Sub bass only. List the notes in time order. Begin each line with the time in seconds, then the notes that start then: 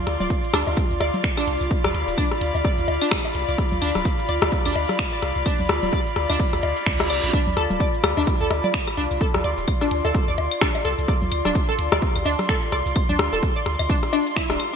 0.07 D2
0.20 D1
0.54 D2
0.67 D2
0.91 D2
1.00 D2
1.47 C2
1.61 C2
1.84 D2
1.94 D2
2.08 D1
2.41 D2
2.55 D2
2.78 D2
2.88 D2
3.35 C2
3.49 C2
3.72 D2
3.82 D2
3.95 D1
4.29 D2
4.42 D2
4.66 D2
4.76 D2
5.22 C2
5.36 C2
5.59 D2
5.69 D2
5.83 D1
6.16 D2
6.30 D2
6.53 D2
6.63 D2
6.87 D2
7.10 C2
7.24 A1
7.47 D2
7.57 D2
7.70 D1
8.04 D2
8.17 D2
8.41 D2
8.51 D2
8.97 C2
9.11 C2
9.34 D2
9.44 D2
9.58 D1
9.91 D2
10.05 D2
10.28 D2
10.38 D2
10.85 C2
10.98 C2
11.22 D2
11.32 D2
11.45 D1
11.79 D2
11.92 D2
12.16 D2
12.26 D2
12.72 C2
12.86 C2
13.09 D2
13.19 D2
13.33 D1
13.66 D2
13.80 D2
14.50 D1